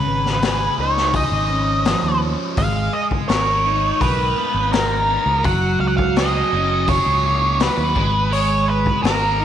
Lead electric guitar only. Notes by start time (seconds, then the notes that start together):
Already playing: B4
0.81 C#5
1.16 D#5
2.58 F5
2.93 D#5
3.28 C#5
4.01 B4
4.72 A#4
5.45 F#5
5.80 F5
5.88 F#5
5.97 F5
6.17 D#5
6.89 C#5
7.62 B4
8.33 C#5
8.68 B4
9.03 A#4